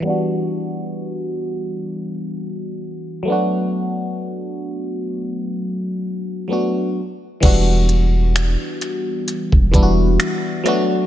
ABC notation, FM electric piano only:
X:1
M:4/4
L:1/8
Q:"Swing 16ths" 1/4=65
K:Em
V:1 name="FM electric piano"
[E,G,B,DF]6- [E,G,B,DF] [F,A,B,DF]- | [F,A,B,DF]6 [F,A,B,DF] z | [E,G,B,DF]3 z2 [E,G,B,DEF]2 [F,A,B,DF] |]